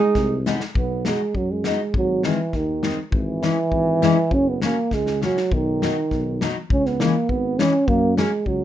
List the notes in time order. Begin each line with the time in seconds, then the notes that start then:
Already playing: G#3 D#4
0.15 C2, kick, snare
0.46 G#3 B3 D#4, snare, hi-hat pedal
0.60 snare
0.75 B1 B3, kick
1.05 F#3 G#3 B3 D#4, snare
1.34 F#2 F#3, kick
1.51 G#3
1.64 F#3 B3 D#4, snare
1.94 G#1 F#3, kick
2.23 D#3 E3 G#3 C4, snare
2.53 D#2 D#3, kick, snare
2.83 D#3 G#3 C4, snare
3.12 G#1 E3, kick
3.43 E3 G#3 C#4, snare
3.71 G#1, kick
4.02 E3 G#3 C#4, snare
4.31 F#1 C#4, kick
4.49 B3
4.62 F#3 A#3 C#4, snare
4.91 C#2 G#3, kick, snare
5.06 snare
5.22 F#3 A#3 C#4, snare
5.37 snare
5.51 B1 D#3, kick
5.82 F#3 B3 D#4, snare
6.11 B1, kick, snare
6.41 F#3 B3 D#4, snare
6.70 C#2 C#4, kick
6.86 B3, snare
7.00 E3 G#3 A#3 C#4, snare
7.29 G#1 B3, kick
7.59 E3 G#3 C#4, snare
7.88 F#2 A#3, kick
8.17 F#3 G#3 A#3 C#4, snare
8.46 C#2 F#3, kick